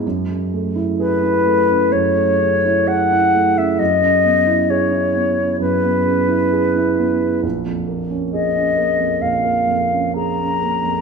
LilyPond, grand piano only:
\new Staff \with { instrumentName = "Grand piano" } { \time 4/4 \key e \major \tempo 4 = 66 fis,16 cis16 a16 e'16 gis'16 e'16 a16 cis16 fis,16 a16 cis16 e'16 gis'16 e'16 a16 cis16 | fis,16 cis16 b16 e'16 gis'16 e'16 b16 cis16 fis,16 b16 cis16 e'16 gis'16 e'16 b16 cis16 | ais,,16 eis,16 ais16 cis'16 gis'16 cis'16 ais16 eis,16 ais,,16 ais16 eis,16 cis'16 gis'16 cis'16 ais16 eis,16 | }